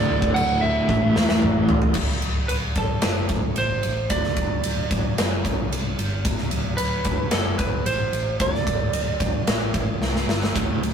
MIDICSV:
0, 0, Header, 1, 5, 480
1, 0, Start_track
1, 0, Tempo, 536193
1, 1753, Time_signature, 4, 2, 24, 8
1, 9791, End_track
2, 0, Start_track
2, 0, Title_t, "Lead electric guitar"
2, 0, Program_c, 0, 29
2, 0, Note_on_c, 0, 74, 103
2, 306, Note_on_c, 0, 78, 104
2, 329, Note_off_c, 0, 74, 0
2, 547, Note_on_c, 0, 76, 92
2, 558, Note_off_c, 0, 78, 0
2, 1473, Note_off_c, 0, 76, 0
2, 2223, Note_on_c, 0, 71, 88
2, 2289, Note_off_c, 0, 71, 0
2, 2486, Note_on_c, 0, 69, 84
2, 3200, Note_off_c, 0, 69, 0
2, 3203, Note_on_c, 0, 72, 95
2, 3670, Note_on_c, 0, 74, 91
2, 3692, Note_off_c, 0, 72, 0
2, 5076, Note_off_c, 0, 74, 0
2, 6060, Note_on_c, 0, 71, 93
2, 6549, Note_off_c, 0, 71, 0
2, 6553, Note_on_c, 0, 69, 92
2, 6783, Note_off_c, 0, 69, 0
2, 6787, Note_on_c, 0, 71, 85
2, 7035, Note_off_c, 0, 71, 0
2, 7039, Note_on_c, 0, 72, 96
2, 7484, Note_off_c, 0, 72, 0
2, 7529, Note_on_c, 0, 74, 98
2, 8928, Note_off_c, 0, 74, 0
2, 9791, End_track
3, 0, Start_track
3, 0, Title_t, "Overdriven electric guitar"
3, 0, Program_c, 1, 29
3, 0, Note_on_c, 1, 38, 96
3, 0, Note_on_c, 1, 45, 105
3, 0, Note_on_c, 1, 50, 108
3, 782, Note_off_c, 1, 38, 0
3, 785, Note_off_c, 1, 45, 0
3, 788, Note_off_c, 1, 50, 0
3, 795, Note_on_c, 1, 45, 85
3, 806, Note_on_c, 1, 52, 103
3, 810, Note_on_c, 1, 57, 104
3, 1738, Note_off_c, 1, 45, 0
3, 1743, Note_off_c, 1, 52, 0
3, 1746, Note_off_c, 1, 57, 0
3, 9438, Note_on_c, 1, 38, 92
3, 9443, Note_on_c, 1, 45, 89
3, 9445, Note_on_c, 1, 50, 99
3, 9664, Note_off_c, 1, 38, 0
3, 9666, Note_off_c, 1, 45, 0
3, 9667, Note_off_c, 1, 50, 0
3, 9690, Note_on_c, 1, 38, 69
3, 9693, Note_on_c, 1, 45, 74
3, 9791, Note_off_c, 1, 38, 0
3, 9791, Note_off_c, 1, 45, 0
3, 9791, End_track
4, 0, Start_track
4, 0, Title_t, "Picked electric bass"
4, 0, Program_c, 2, 34
4, 86, Note_on_c, 2, 26, 98
4, 281, Note_off_c, 2, 26, 0
4, 317, Note_on_c, 2, 26, 94
4, 714, Note_off_c, 2, 26, 0
4, 796, Note_on_c, 2, 33, 102
4, 995, Note_off_c, 2, 33, 0
4, 1029, Note_on_c, 2, 28, 84
4, 1230, Note_off_c, 2, 28, 0
4, 1279, Note_on_c, 2, 33, 99
4, 1476, Note_off_c, 2, 33, 0
4, 1513, Note_on_c, 2, 33, 81
4, 1712, Note_off_c, 2, 33, 0
4, 1751, Note_on_c, 2, 26, 92
4, 1955, Note_off_c, 2, 26, 0
4, 2000, Note_on_c, 2, 26, 78
4, 2200, Note_off_c, 2, 26, 0
4, 2240, Note_on_c, 2, 26, 89
4, 2440, Note_off_c, 2, 26, 0
4, 2470, Note_on_c, 2, 26, 83
4, 2674, Note_off_c, 2, 26, 0
4, 2719, Note_on_c, 2, 30, 92
4, 2920, Note_off_c, 2, 30, 0
4, 2952, Note_on_c, 2, 26, 88
4, 3156, Note_off_c, 2, 26, 0
4, 3194, Note_on_c, 2, 33, 93
4, 3397, Note_off_c, 2, 33, 0
4, 3442, Note_on_c, 2, 33, 88
4, 3641, Note_off_c, 2, 33, 0
4, 3670, Note_on_c, 2, 26, 94
4, 3874, Note_off_c, 2, 26, 0
4, 3915, Note_on_c, 2, 26, 81
4, 4118, Note_off_c, 2, 26, 0
4, 4155, Note_on_c, 2, 26, 85
4, 4358, Note_off_c, 2, 26, 0
4, 4395, Note_on_c, 2, 26, 87
4, 4598, Note_off_c, 2, 26, 0
4, 4636, Note_on_c, 2, 30, 101
4, 4838, Note_off_c, 2, 30, 0
4, 4874, Note_on_c, 2, 35, 81
4, 5077, Note_off_c, 2, 35, 0
4, 5106, Note_on_c, 2, 36, 89
4, 5313, Note_off_c, 2, 36, 0
4, 5353, Note_on_c, 2, 31, 87
4, 5592, Note_off_c, 2, 31, 0
4, 5592, Note_on_c, 2, 26, 97
4, 5797, Note_off_c, 2, 26, 0
4, 5836, Note_on_c, 2, 26, 89
4, 6039, Note_off_c, 2, 26, 0
4, 6072, Note_on_c, 2, 26, 90
4, 6277, Note_off_c, 2, 26, 0
4, 6311, Note_on_c, 2, 26, 83
4, 6516, Note_off_c, 2, 26, 0
4, 6552, Note_on_c, 2, 30, 102
4, 6757, Note_off_c, 2, 30, 0
4, 6798, Note_on_c, 2, 26, 87
4, 7001, Note_off_c, 2, 26, 0
4, 7033, Note_on_c, 2, 33, 96
4, 7238, Note_off_c, 2, 33, 0
4, 7264, Note_on_c, 2, 33, 82
4, 7473, Note_off_c, 2, 33, 0
4, 7518, Note_on_c, 2, 26, 93
4, 7721, Note_off_c, 2, 26, 0
4, 7760, Note_on_c, 2, 26, 89
4, 7962, Note_off_c, 2, 26, 0
4, 7982, Note_on_c, 2, 26, 93
4, 8192, Note_off_c, 2, 26, 0
4, 8238, Note_on_c, 2, 26, 84
4, 8441, Note_off_c, 2, 26, 0
4, 8463, Note_on_c, 2, 33, 96
4, 8673, Note_off_c, 2, 33, 0
4, 8716, Note_on_c, 2, 33, 84
4, 8921, Note_off_c, 2, 33, 0
4, 8957, Note_on_c, 2, 36, 86
4, 9161, Note_off_c, 2, 36, 0
4, 9192, Note_on_c, 2, 31, 84
4, 9399, Note_off_c, 2, 31, 0
4, 9449, Note_on_c, 2, 26, 94
4, 9648, Note_off_c, 2, 26, 0
4, 9677, Note_on_c, 2, 26, 89
4, 9791, Note_off_c, 2, 26, 0
4, 9791, End_track
5, 0, Start_track
5, 0, Title_t, "Drums"
5, 199, Note_on_c, 9, 36, 92
5, 288, Note_off_c, 9, 36, 0
5, 323, Note_on_c, 9, 49, 70
5, 412, Note_off_c, 9, 49, 0
5, 795, Note_on_c, 9, 36, 73
5, 885, Note_off_c, 9, 36, 0
5, 1038, Note_on_c, 9, 38, 82
5, 1128, Note_off_c, 9, 38, 0
5, 1153, Note_on_c, 9, 38, 76
5, 1243, Note_off_c, 9, 38, 0
5, 1271, Note_on_c, 9, 45, 91
5, 1360, Note_off_c, 9, 45, 0
5, 1509, Note_on_c, 9, 43, 105
5, 1599, Note_off_c, 9, 43, 0
5, 1627, Note_on_c, 9, 43, 99
5, 1716, Note_off_c, 9, 43, 0
5, 1735, Note_on_c, 9, 57, 100
5, 1747, Note_on_c, 9, 36, 104
5, 1824, Note_off_c, 9, 57, 0
5, 1837, Note_off_c, 9, 36, 0
5, 1874, Note_on_c, 9, 38, 30
5, 1963, Note_off_c, 9, 38, 0
5, 1987, Note_on_c, 9, 51, 73
5, 2076, Note_off_c, 9, 51, 0
5, 2230, Note_on_c, 9, 51, 96
5, 2319, Note_off_c, 9, 51, 0
5, 2466, Note_on_c, 9, 51, 71
5, 2469, Note_on_c, 9, 36, 82
5, 2555, Note_off_c, 9, 51, 0
5, 2559, Note_off_c, 9, 36, 0
5, 2701, Note_on_c, 9, 51, 89
5, 2704, Note_on_c, 9, 38, 110
5, 2790, Note_off_c, 9, 51, 0
5, 2794, Note_off_c, 9, 38, 0
5, 2943, Note_on_c, 9, 51, 62
5, 2950, Note_on_c, 9, 36, 91
5, 3032, Note_off_c, 9, 51, 0
5, 3039, Note_off_c, 9, 36, 0
5, 3185, Note_on_c, 9, 51, 79
5, 3274, Note_off_c, 9, 51, 0
5, 3428, Note_on_c, 9, 51, 68
5, 3518, Note_off_c, 9, 51, 0
5, 3668, Note_on_c, 9, 51, 90
5, 3672, Note_on_c, 9, 36, 104
5, 3758, Note_off_c, 9, 51, 0
5, 3762, Note_off_c, 9, 36, 0
5, 3795, Note_on_c, 9, 38, 32
5, 3884, Note_off_c, 9, 38, 0
5, 3907, Note_on_c, 9, 51, 69
5, 3910, Note_on_c, 9, 36, 84
5, 3997, Note_off_c, 9, 51, 0
5, 3999, Note_off_c, 9, 36, 0
5, 4150, Note_on_c, 9, 51, 97
5, 4239, Note_off_c, 9, 51, 0
5, 4394, Note_on_c, 9, 36, 84
5, 4394, Note_on_c, 9, 51, 73
5, 4483, Note_off_c, 9, 51, 0
5, 4484, Note_off_c, 9, 36, 0
5, 4638, Note_on_c, 9, 51, 96
5, 4642, Note_on_c, 9, 38, 115
5, 4728, Note_off_c, 9, 51, 0
5, 4731, Note_off_c, 9, 38, 0
5, 4876, Note_on_c, 9, 36, 87
5, 4883, Note_on_c, 9, 51, 73
5, 4966, Note_off_c, 9, 36, 0
5, 4973, Note_off_c, 9, 51, 0
5, 5124, Note_on_c, 9, 51, 84
5, 5214, Note_off_c, 9, 51, 0
5, 5360, Note_on_c, 9, 51, 74
5, 5450, Note_off_c, 9, 51, 0
5, 5594, Note_on_c, 9, 36, 108
5, 5596, Note_on_c, 9, 51, 101
5, 5684, Note_off_c, 9, 36, 0
5, 5685, Note_off_c, 9, 51, 0
5, 5712, Note_on_c, 9, 38, 33
5, 5801, Note_off_c, 9, 38, 0
5, 5829, Note_on_c, 9, 51, 73
5, 5918, Note_off_c, 9, 51, 0
5, 6069, Note_on_c, 9, 51, 95
5, 6158, Note_off_c, 9, 51, 0
5, 6307, Note_on_c, 9, 51, 78
5, 6313, Note_on_c, 9, 36, 90
5, 6396, Note_off_c, 9, 51, 0
5, 6403, Note_off_c, 9, 36, 0
5, 6544, Note_on_c, 9, 51, 91
5, 6548, Note_on_c, 9, 38, 117
5, 6634, Note_off_c, 9, 51, 0
5, 6637, Note_off_c, 9, 38, 0
5, 6792, Note_on_c, 9, 51, 73
5, 6795, Note_on_c, 9, 36, 87
5, 6881, Note_off_c, 9, 51, 0
5, 6884, Note_off_c, 9, 36, 0
5, 7036, Note_on_c, 9, 51, 87
5, 7126, Note_off_c, 9, 51, 0
5, 7278, Note_on_c, 9, 51, 66
5, 7368, Note_off_c, 9, 51, 0
5, 7518, Note_on_c, 9, 51, 85
5, 7520, Note_on_c, 9, 36, 110
5, 7607, Note_off_c, 9, 51, 0
5, 7609, Note_off_c, 9, 36, 0
5, 7651, Note_on_c, 9, 38, 34
5, 7741, Note_off_c, 9, 38, 0
5, 7760, Note_on_c, 9, 36, 79
5, 7763, Note_on_c, 9, 51, 72
5, 7849, Note_off_c, 9, 36, 0
5, 7853, Note_off_c, 9, 51, 0
5, 7997, Note_on_c, 9, 51, 90
5, 8087, Note_off_c, 9, 51, 0
5, 8238, Note_on_c, 9, 36, 85
5, 8240, Note_on_c, 9, 51, 72
5, 8328, Note_off_c, 9, 36, 0
5, 8329, Note_off_c, 9, 51, 0
5, 8480, Note_on_c, 9, 51, 94
5, 8483, Note_on_c, 9, 38, 113
5, 8569, Note_off_c, 9, 51, 0
5, 8573, Note_off_c, 9, 38, 0
5, 8720, Note_on_c, 9, 51, 69
5, 8721, Note_on_c, 9, 36, 85
5, 8810, Note_off_c, 9, 36, 0
5, 8810, Note_off_c, 9, 51, 0
5, 8967, Note_on_c, 9, 38, 59
5, 9056, Note_off_c, 9, 38, 0
5, 9093, Note_on_c, 9, 38, 61
5, 9182, Note_off_c, 9, 38, 0
5, 9213, Note_on_c, 9, 38, 89
5, 9302, Note_off_c, 9, 38, 0
5, 9341, Note_on_c, 9, 38, 88
5, 9431, Note_off_c, 9, 38, 0
5, 9450, Note_on_c, 9, 36, 115
5, 9455, Note_on_c, 9, 51, 96
5, 9539, Note_off_c, 9, 36, 0
5, 9544, Note_off_c, 9, 51, 0
5, 9698, Note_on_c, 9, 51, 73
5, 9787, Note_off_c, 9, 51, 0
5, 9791, End_track
0, 0, End_of_file